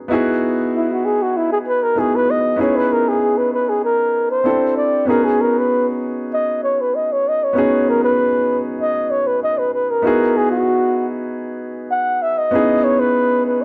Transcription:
0.08 grand piano B3 D#4 E4 F#4
0.13 grand piano G#4
0.76 flugelhorn E4
0.92 flugelhorn F#4
1.05 flugelhorn G#4
1.23 flugelhorn F#4
1.37 flugelhorn E4
1.52 flugelhorn G#4
1.68 flugelhorn B4
1.83 flugelhorn A#4
1.95 grand piano B3 D#4 E4 F#4 G#4, flugelhorn G#4
2.16 flugelhorn B4
2.30 flugelhorn D#5
2.56 grand piano B3 C#4 D#4 E4
2.61 grand piano G#4, flugelhorn C#5
2.76 flugelhorn B4
2.93 flugelhorn A#4
3.09 flugelhorn G#4
3.38 flugelhorn B4
3.54 flugelhorn B4
3.69 flugelhorn G#4
3.84 flugelhorn A#4
4.31 flugelhorn C5
4.44 grand piano C4 D4 E4 G4 A4
4.77 flugelhorn D5
5.05 grand piano B3 C#4 D#4 F#4, flugelhorn A#4
5.10 grand piano G#4
5.24 flugelhorn G#4
5.41 flugelhorn A#4
5.58 flugelhorn B4
6.33 flugelhorn D#5
6.64 flugelhorn C#5
6.81 flugelhorn B4
6.95 flugelhorn D#5
7.13 flugelhorn C#5
7.28 flugelhorn D#5
7.44 flugelhorn C#5
7.53 grand piano B3 C#4 D#4 F#4
7.58 grand piano G#4
7.89 flugelhorn A#4
8.04 flugelhorn B4
8.80 flugelhorn D#5
9.11 flugelhorn C#5
9.27 flugelhorn B4
9.43 flugelhorn D#5
9.58 flugelhorn B4
9.74 flugelhorn B4
9.90 flugelhorn A#4
10.02 grand piano B3 D#4 E4 F#4
10.07 grand piano G#4
10.37 flugelhorn G#4
10.51 flugelhorn F#4
11.91 flugelhorn F#5
12.22 flugelhorn E5
12.38 flugelhorn D#5
12.51 grand piano B3 C#4 D#4 E4
12.55 grand piano G#4
12.84 flugelhorn C#5
12.99 flugelhorn B4
13.46 flugelhorn B4

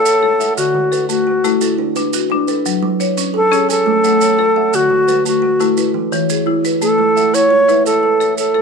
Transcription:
Already playing: marimba A4, flute A4, kalimba F#5
0.05 marimba C#5, maracas
0.22 kalimba A4, marimba A4
0.40 marimba E5, kalimba F#5, maracas
0.57 marimba D3, flute F#4, maracas
0.75 kalimba D3
0.92 marimba A4, kalimba B4, maracas
1.09 marimba A3, flute F#4, maracas
1.27 kalimba F#4
1.44 marimba A3 E4, kalimba A4, maracas
1.61 kalimba E4, marimba A4, maracas
1.79 kalimba D4
1.96 marimba D4, kalimba B4, maracas
2.13 marimba F#4, maracas
2.30 kalimba D4, marimba D4
2.48 marimba A4, kalimba B4, maracas
2.66 marimba F#3, maracas
2.83 kalimba F#3
3.00 kalimba D4, marimba C#5, maracas
3.17 marimba C#4, maracas
3.34 kalimba A4, flute A4
3.51 marimba C#4 G#4, kalimba C#5, maracas
3.69 flute A4, kalimba G#5, maracas
3.86 kalimba A3
4.04 marimba A3, kalimba F#5, maracas
4.21 marimba C#5, maracas
4.38 kalimba A4, marimba A4
4.56 marimba E5, kalimba F#5
4.73 marimba D3, flute F#4, maracas
4.90 kalimba D3
5.07 marimba A4, kalimba B4, maracas
5.25 marimba A3, flute F#4, maracas
5.42 kalimba F#4
5.60 marimba A3 E4, kalimba A4, maracas
5.77 kalimba E4, marimba B4, maracas
5.94 kalimba E3
6.12 marimba E3, kalimba C#5, maracas
6.30 marimba G#4, maracas
6.46 kalimba E4, marimba E4
6.65 marimba B4, maracas
6.82 marimba A3, flute A4, maracas
6.98 kalimba A3
7.16 marimba E5, kalimba F#5, maracas
7.34 marimba E4, flute C#5, maracas
7.50 kalimba C#5
7.68 marimba E4 B4, kalimba E5, maracas
7.86 flute A4, kalimba B4, marimba E5, maracas
8.03 kalimba A4
8.20 marimba A4, maracas
8.37 flute A4, marimba C#5, maracas
8.54 marimba A4, kalimba A4

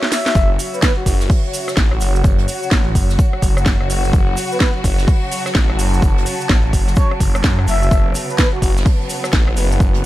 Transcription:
Already playing: ambient pad F#4 C#5 E5
0.03 snare
0.12 soft synth lead E5, snare, open hi-hat, shaker
0.26 snare, shaker
0.35 detuned saw bass F#1, string section C#3 F#3 F#4, kick, shaker
0.59 open hi-hat, shaker
0.73 soft synth lead B4, shaker
0.82 soft synth lead B4, kick, snare, shaker
0.97 soft synth lead F#4
1.06 detuned saw bass F#1, soft synth lead F#4, kick, open hi-hat, shaker
1.20 snare, shaker
1.25 ambient pad F#5
1.30 kick, open hi-hat, shaker
1.53 open hi-hat, shaker
1.68 cross-stick, snare, shaker
1.77 detuned saw bass A1, kick, snare, shaker
1.92 cross-stick
2.00 detuned saw bass F#1, open hi-hat, shaker
2.16 shaker
2.24 detuned saw bass F#1, kick, shaker
2.38 closed hi-hat
2.48 open hi-hat, shaker
2.63 shaker
2.71 detuned saw bass A1, kick, snare, shaker
2.95 detuned saw bass F#1, kick, open hi-hat, shaker
3.10 snare, shaker
3.19 kick, shaker
3.33 cross-stick
3.42 detuned saw bass F#1, kick, open hi-hat, shaker
3.57 cross-stick, shaker
3.66 kick, snare, shaker
3.80 detuned saw bass F#1, cross-stick
3.90 open hi-hat, shaker
4.05 shaker
4.13 detuned saw bass F#1, kick, shaker
4.36 open hi-hat, shaker
4.38 shaker
4.51 soft synth lead B4, shaker
4.60 soft synth lead B4, kick, snare, shaker
4.84 detuned saw bass F#1, kick, open hi-hat, shaker
4.98 snare, shaker
5.03 ambient pad A5
5.08 kick, open hi-hat, shaker
5.31 open hi-hat, shaker
5.46 cross-stick, snare, shaker
5.55 detuned saw bass A1, kick, snare, shaker
5.70 cross-stick
5.79 detuned saw bass F#1, open hi-hat, shaker
5.94 shaker
6.02 detuned saw bass F#1, kick, shaker
6.18 closed hi-hat
6.26 open hi-hat, shaker
6.41 shaker
6.49 detuned saw bass A1, kick, snare, shaker
6.73 detuned saw bass F#1, kick, open hi-hat, shaker
6.87 snare, shaker
6.95 soft synth lead C#5, kick, shaker
6.97 shaker
7.11 cross-stick
7.20 detuned saw bass F#1, kick, open hi-hat, shaker
7.35 cross-stick, shaker
7.44 detuned saw bass F#2, kick, snare, shaker
7.59 cross-stick
7.67 detuned saw bass F#1, soft synth lead E5, open hi-hat, shaker
7.83 shaker
7.91 detuned saw bass F#1, string section B3, kick, shaker
8.14 open hi-hat, shaker
8.29 soft synth lead B4, shaker
8.38 soft synth lead B4, kick, snare, shaker
8.53 soft synth lead F#4
8.62 detuned saw bass F#1, soft synth lead F#4, kick, open hi-hat, shaker
8.77 ambient pad F#5, snare, shaker
8.86 kick, open hi-hat, shaker
9.09 open hi-hat, shaker
9.24 cross-stick, snare, shaker
9.32 detuned saw bass A1, kick, snare, shaker
9.34 shaker
9.48 cross-stick
9.56 detuned saw bass F#1, open hi-hat, shaker
9.72 shaker
9.80 detuned saw bass F#1, kick, shaker
9.94 closed hi-hat

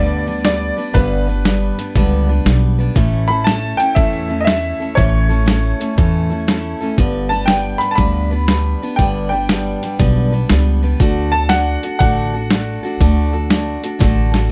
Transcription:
Already playing: upright bass D2, steel-string acoustic guitar G2 D3 G3 B3 D4 B4, upright piano D5
0.27 steel-string acoustic guitar G3 B3 D4 B4
0.44 steel-string acoustic guitar G3 B3 D4 B4, upright piano D5, snare, closed hi-hat
0.77 steel-string acoustic guitar G3 B3 D4 B4
0.93 upright bass G1, steel-string acoustic guitar G2 D3 G3 B3 D4 B4, upright piano B4, kick, closed hi-hat
1.27 steel-string acoustic guitar G3 B3 D4 B4
1.45 steel-string acoustic guitar G3 B3 D4 B4, snare, closed hi-hat
1.78 steel-string acoustic guitar G3 B3 D4 B4, closed hi-hat
1.95 upright bass C#2, steel-string acoustic guitar G2 D3 G3 B3 D4 B4, kick, closed hi-hat
2.29 steel-string acoustic guitar G3 B3 D4 B4
2.45 upright bass B1, steel-string acoustic guitar G3 B3 D4 B4, snare, closed hi-hat
2.79 steel-string acoustic guitar G3 B3 D4 B4
2.95 upright bass A1, steel-string acoustic guitar A2 E3 A3 C#4 E4 A4, kick, closed hi-hat
3.28 steel-string acoustic guitar A3 C#4 E4 A4, upright piano B5
3.44 steel-string acoustic guitar A3 C#4 E4, upright piano A5, snare, closed hi-hat
3.48 steel-string acoustic guitar A4
3.77 steel-string acoustic guitar C#4 E4 A4, upright piano G5, closed hi-hat
3.81 steel-string acoustic guitar A3
3.95 upright bass E2, steel-string acoustic guitar A2 E3 A3 C#4 E4 A4, upright piano E5, kick, closed hi-hat
4.29 steel-string acoustic guitar A3 C#4 E4 A4
4.40 upright piano D#5
4.45 steel-string acoustic guitar A3 C#4 E4, upright piano E5, snare, closed hi-hat
4.49 steel-string acoustic guitar A4
4.80 steel-string acoustic guitar A3 C#4 E4 A4
4.95 upright bass A1, steel-string acoustic guitar A2 E3 A3 C#4 E4 A4, upright piano C#5, kick, closed hi-hat
5.29 steel-string acoustic guitar A3 C#4 E4 A4
5.45 steel-string acoustic guitar A3 C#4 E4 A4, snare, closed hi-hat
5.80 steel-string acoustic guitar A3 C#4 E4 A4, closed hi-hat
5.98 upright bass E2, steel-string acoustic guitar A2 E3 A3 C#4 E4 A4, kick, closed hi-hat
6.30 steel-string acoustic guitar A3 C#4 E4 A4
6.47 steel-string acoustic guitar A3 C#4 E4 A4, snare, closed hi-hat
6.81 steel-string acoustic guitar A3 C#4 E4 A4
6.98 upright bass G1, steel-string acoustic guitar G2 D3 G3 B3 D4 B4, kick, closed hi-hat
7.29 steel-string acoustic guitar G3 B3 D4 B4, upright piano A5
7.46 steel-string acoustic guitar G3 B3, upright piano G5, snare, closed hi-hat
7.50 steel-string acoustic guitar D4 B4
7.78 steel-string acoustic guitar B3 D4 B4, upright piano B5, closed hi-hat
7.82 steel-string acoustic guitar G3
7.91 upright piano A5
7.96 upright bass D2, steel-string acoustic guitar G2 D3 G3 B3 D4 B4, upright piano B5, kick, closed hi-hat
8.31 steel-string acoustic guitar G3 B3 D4 B4
8.48 steel-string acoustic guitar G3 B3 D4 B4, snare, closed hi-hat
8.82 steel-string acoustic guitar G3 B3 D4 B4
8.96 upright bass G1, steel-string acoustic guitar G2 D3 G3, upright piano G5, kick, closed hi-hat
9.01 steel-string acoustic guitar B3 D4 B4
9.29 steel-string acoustic guitar B3 D4 B4, upright piano G5
9.34 steel-string acoustic guitar G3
9.49 steel-string acoustic guitar G3 B3 D4 B4, snare, closed hi-hat
9.83 steel-string acoustic guitar G3 B3 D4 B4, closed hi-hat
9.99 upright bass B1, steel-string acoustic guitar G2 D3 G3 B3 D4 B4, kick, closed hi-hat
10.32 steel-string acoustic guitar G3 B3 D4 B4
10.49 upright bass C#2, steel-string acoustic guitar G3 B3 D4 B4, snare, closed hi-hat
10.83 steel-string acoustic guitar G3 B3 D4 B4
11.00 upright bass D2, steel-string acoustic guitar D3 A3 D4 F#4 A4, kick, closed hi-hat
11.32 steel-string acoustic guitar D4 F#4 A4, upright piano A5
11.49 steel-string acoustic guitar A3 D4 F#4 A4, upright piano F#5, snare, closed hi-hat
11.83 steel-string acoustic guitar D4 F#4 A4, closed hi-hat
11.99 upright bass A1, steel-string acoustic guitar D3 A3 D4 F#4 A4, upright piano F#5, kick, closed hi-hat
12.34 steel-string acoustic guitar D4 F#4 A4
12.51 steel-string acoustic guitar A3 D4 F#4 A4, snare, closed hi-hat
12.83 steel-string acoustic guitar D4 F#4 A4
13.00 upright bass D2, steel-string acoustic guitar D3 A3 D4 F#4 A4, kick, closed hi-hat
13.33 steel-string acoustic guitar D4 F#4 A4
13.50 steel-string acoustic guitar A3 D4 F#4 A4, snare, closed hi-hat
13.83 steel-string acoustic guitar D4 F#4 A4, closed hi-hat
13.99 upright bass A1, steel-string acoustic guitar D3 A3 D4 F#4 A4, kick, snare, closed hi-hat
14.32 steel-string acoustic guitar D4 F#4 A4, snare

